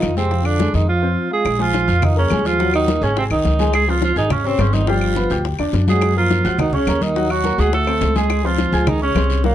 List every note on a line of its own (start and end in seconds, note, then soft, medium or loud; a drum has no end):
0.00 0.69 F2 medium
0.00 0.15 D#3 medium
0.00 0.12 F3 medium
0.00 0.16 D#4 medium
0.00 0.12 F4 medium
0.00 high bongo soft
0.00 low bongo medium
0.00 high conga medium
0.00 short guiro medium
0.00 claves medium
0.16 0.46 C3 medium
0.16 0.28 G#3 medium
0.16 0.47 C4 medium
0.16 0.29 G#4 medium
0.16 high bongo soft
0.16 high conga soft
0.16 short guiro medium
0.31 0.54 F3 medium
0.31 0.54 F4 medium
0.31 high bongo medium
0.31 high conga soft
0.31 long guiro medium
0.45 0.73 D3 medium
0.45 0.74 D4 medium
0.45 high conga soft
0.45 claves medium
0.59 0.83 G#3 medium
0.59 0.83 G#4 medium
0.59 high bongo medium
0.59 high conga medium
0.59 short guiro medium
0.73 1.14 F2 loud
0.73 0.87 D#3 medium
0.73 0.88 D#4 medium
0.73 high bongo soft
0.73 high conga soft
0.73 short guiro medium
0.88 1.28 F3 medium
0.88 1.00 F4 medium
0.88 1.29 F4 medium
0.88 1.00 F5 medium
1.02 1.26 C4 medium
1.02 1.26 C5 medium
1.31 1.62 G#3 medium
1.31 1.43 F4 medium
1.31 1.63 G#4 loud
1.31 1.43 F5 medium
1.45 1.85 A#1 medium
1.45 high bongo medium
1.45 high conga soft
1.45 long guiro medium
1.45 claves medium
1.59 2.05 F3 medium
1.59 1.83 G#3 medium
1.59 2.06 F4 loud
1.59 1.83 G#4 medium
1.59 1.83 G#5 medium
1.59 high bongo soft
1.59 high conga soft
1.73 high bongo medium
1.73 high conga medium
1.73 short guiro medium
1.88 2.28 F2 loud
1.88 2.11 F4 medium
1.88 2.11 F5 medium
1.88 2.12 F6 medium
1.88 high bongo soft
1.88 high conga soft
1.88 short guiro medium
2.02 2.17 D#3 medium
2.02 2.18 D#4 medium
2.02 high bongo medium
2.02 high conga soft
2.02 low conga medium
2.02 long guiro medium
2.02 claves medium
2.16 2.47 C#3 medium
2.16 2.28 A#3 medium
2.16 2.48 C#4 medium
2.16 2.28 A#4 medium
2.16 2.28 A#5 medium
2.16 high conga soft
2.30 2.97 D#2 medium
2.30 2.54 G#3 medium
2.30 2.54 G#4 medium
2.30 2.55 G#5 medium
2.30 high bongo soft
2.30 low bongo medium
2.30 high conga medium
2.30 short guiro medium
2.30 claves medium
2.45 2.73 F3 medium
2.45 2.74 F4 loud
2.45 high bongo soft
2.45 short guiro medium
2.59 2.83 F#3 medium
2.59 2.83 F#4 medium
2.59 2.83 F#5 medium
2.59 high bongo medium
2.59 long guiro medium
2.74 3.04 D#3 medium
2.74 3.05 D#4 loud
2.74 high bongo soft
2.74 high conga soft
2.74 claves medium
2.88 3.00 A#3 medium
2.88 3.00 A#4 medium
2.88 3.00 A#5 medium
2.88 high bongo medium
2.88 high conga medium
2.88 short guiro medium
3.01 3.28 G#1 loud
3.01 3.16 C#3 medium
3.01 3.17 C#4 medium
3.01 3.26 G#4 medium
3.01 3.26 G#5 medium
3.01 3.26 G#6 medium
3.01 high bongo soft
3.01 high conga soft
3.01 short guiro medium
3.16 3.23 C3 medium
3.16 3.24 C4 medium
3.16 high bongo medium
3.16 high conga soft
3.16 long guiro medium
3.30 3.44 C2 medium
3.30 3.70 D#3 medium
3.30 3.54 D#4 medium
3.30 3.71 D#4 medium
3.30 3.54 D#5 medium
3.30 3.55 D#6 medium
3.30 high conga soft
3.30 claves medium
3.44 4.11 C#2 medium
3.44 high bongo soft
3.44 low bongo medium
3.44 high conga soft
3.44 short guiro medium
3.59 3.83 G#3 medium
3.59 3.83 G#4 medium
3.59 3.83 G#5 medium
3.59 high bongo soft
3.59 high conga medium
3.59 short guiro medium
3.73 3.88 G#3 medium
3.73 3.91 G#4 loud
3.73 high bongo medium
3.73 long guiro medium
3.73 claves medium
3.87 4.01 F3 medium
3.87 4.11 C4 medium
3.87 4.03 F4 medium
3.87 4.11 C5 medium
3.87 4.12 C6 medium
3.87 high bongo soft
3.87 high conga soft
4.01 4.15 F3 medium
4.01 4.17 F4 medium
4.01 high bongo medium
4.01 high conga medium
4.01 short guiro medium
4.16 4.56 G#1 medium
4.16 4.31 D#3 medium
4.16 4.33 D#4 loud
4.16 4.40 G#4 medium
4.16 4.40 G#5 medium
4.16 4.40 G#6 medium
4.16 high bongo soft
4.16 high conga soft
4.16 short guiro medium
4.30 4.46 C#3 medium
4.30 4.47 C#4 medium
4.30 high bongo medium
4.30 high conga soft
4.30 low conga medium
4.30 long guiro medium
4.30 claves medium
4.44 4.60 C3 medium
4.44 4.62 C4 medium
4.44 4.56 C#4 medium
4.44 4.57 C#5 medium
4.44 4.57 C#6 medium
4.44 high conga soft
4.58 5.25 G1 medium
4.58 4.75 C#3 medium
4.58 4.82 C4 medium
4.58 4.76 C#4 medium
4.58 4.83 C5 medium
4.58 4.83 C6 medium
4.58 high bongo soft
4.58 low bongo medium
4.58 high conga medium
4.58 short guiro medium
4.58 claves medium
4.73 4.89 D#3 medium
4.73 4.90 D#4 medium
4.73 high bongo soft
4.73 high conga medium
4.73 short guiro medium
4.87 5.45 F3 medium
4.87 5.11 G3 medium
4.87 5.45 F4 medium
4.87 5.11 G4 medium
4.87 5.11 G5 medium
4.87 high bongo medium
4.87 long guiro medium
5.01 high bongo soft
5.01 high conga soft
5.01 claves medium
5.15 5.28 B3 medium
5.15 5.28 B4 medium
5.15 5.28 B5 medium
5.15 high bongo medium
5.15 high conga medium
5.15 short guiro medium
5.30 5.57 D2 loud
5.30 5.54 G4 medium
5.30 5.54 G5 medium
5.30 5.54 G6 medium
5.30 high bongo soft
5.30 high conga soft
5.30 short guiro medium
5.45 high bongo medium
5.45 high conga soft
5.45 long guiro medium
5.59 5.72 E2 medium
5.59 5.82 D4 medium
5.59 5.83 D5 medium
5.59 5.83 D6 medium
5.59 high conga soft
5.59 claves medium
5.73 6.39 F#2 loud
5.73 high bongo soft
5.73 low bongo medium
5.73 high conga soft
5.73 short guiro medium
5.88 6.11 F#3 medium
5.88 6.14 G#3 medium
5.88 6.11 F#4 medium
5.88 6.15 G#4 loud
5.88 6.11 F#5 medium
5.88 high bongo soft
5.88 high conga medium
5.88 short guiro medium
6.01 high bongo medium
6.01 high conga soft
6.01 long guiro medium
6.01 claves medium
6.16 6.56 F3 medium
6.16 6.40 A#3 medium
6.16 6.57 F4 medium
6.16 6.40 A#4 medium
6.16 6.40 A#5 medium
6.16 high bongo soft
6.16 high conga soft
6.30 high bongo medium
6.30 high conga medium
6.30 short guiro medium
6.44 6.84 C#2 loud
6.44 6.68 F#4 medium
6.44 6.68 F#5 medium
6.44 6.68 F#6 medium
6.44 high bongo soft
6.44 high conga soft
6.44 short guiro medium
6.58 6.75 D#3 medium
6.58 6.75 D#4 medium
6.58 high bongo medium
6.58 high conga soft
6.58 low conga medium
6.58 long guiro medium
6.58 claves medium
6.73 7.04 C#3 medium
6.73 6.85 C#4 medium
6.73 7.04 C#4 medium
6.73 6.85 C#5 medium
6.73 6.85 C#6 medium
6.73 high conga soft
6.73 low conga medium
6.87 7.53 D#2 medium
6.87 7.11 A#3 medium
6.87 7.11 A#4 medium
6.87 7.11 A#5 medium
6.87 high bongo soft
6.87 low bongo medium
6.87 high conga medium
6.87 short guiro medium
6.87 claves medium
7.01 7.32 D#3 medium
7.01 7.32 D#4 loud
7.01 high bongo soft
7.01 high conga medium
7.01 short guiro medium
7.16 7.39 F#3 medium
7.16 7.39 F#4 medium
7.16 7.40 F#5 medium
7.16 high bongo medium
7.16 high conga soft
7.16 long guiro medium
7.30 7.60 F#3 medium
7.30 7.61 F#4 loud
7.30 high bongo soft
7.30 high conga soft
7.30 claves medium
7.44 7.56 A#3 medium
7.44 7.56 A#4 medium
7.44 7.56 A#5 medium
7.44 high bongo medium
7.44 high conga medium
7.44 short guiro medium
7.58 7.98 D2 medium
7.58 7.72 G#3 medium
7.58 7.82 F#4 medium
7.58 7.73 G#4 loud
7.58 7.82 F#5 medium
7.58 7.83 F#6 medium
7.58 high bongo soft
7.58 high conga soft
7.58 short guiro medium
7.72 8.17 A3 medium
7.72 8.18 A4 loud
7.72 high bongo medium
7.72 high conga soft
7.72 long guiro medium
7.87 8.10 C4 medium
7.87 8.11 C5 medium
7.87 8.11 C6 medium
7.87 high conga soft
7.87 claves medium
8.01 8.67 C#2 loud
8.01 high bongo soft
8.01 low bongo medium
8.01 high conga soft
8.01 short guiro medium
8.15 8.39 G#3 medium
8.15 8.46 G#3 medium
8.15 8.39 G#4 medium
8.15 8.47 G#4 loud
8.15 8.39 G#5 medium
8.15 high bongo soft
8.15 high conga medium
8.15 short guiro medium
8.30 high bongo medium
8.30 high conga soft
8.30 long guiro medium
8.30 claves medium
8.44 8.89 F3 loud
8.44 8.68 C4 medium
8.44 8.90 F4 medium
8.44 8.68 C5 medium
8.44 8.68 C6 medium
8.44 high bongo soft
8.44 high conga soft
8.58 high bongo medium
8.58 high conga medium
8.58 short guiro medium
8.72 9.13 C#2 loud
8.72 8.96 G#4 medium
8.72 8.97 G#5 medium
8.72 8.97 G#6 medium
8.72 high bongo soft
8.72 high conga soft
8.72 short guiro medium
8.87 9.01 D#3 medium
8.87 9.02 D#4 medium
8.87 high bongo medium
8.87 high conga soft
8.87 low conga medium
8.87 long guiro medium
8.87 claves medium
9.01 9.42 C#3 medium
9.01 9.13 C#4 medium
9.01 9.42 C#4 medium
9.01 9.13 C#5 medium
9.01 9.14 C#6 medium
9.01 high conga soft
9.15 9.55 C2 medium
9.15 9.39 C4 medium
9.15 9.40 C5 medium
9.15 9.40 C6 medium
9.15 high bongo soft
9.15 low bongo medium
9.15 high conga medium
9.15 short guiro medium
9.15 claves medium
9.30 high bongo soft
9.30 short guiro medium
9.44 9.55 A#2 medium
9.44 9.55 F#3 medium
9.44 9.55 A#3 medium
9.44 9.55 F#4 medium
9.44 9.55 F#5 medium
9.44 high bongo medium
9.44 high conga soft
9.44 long guiro medium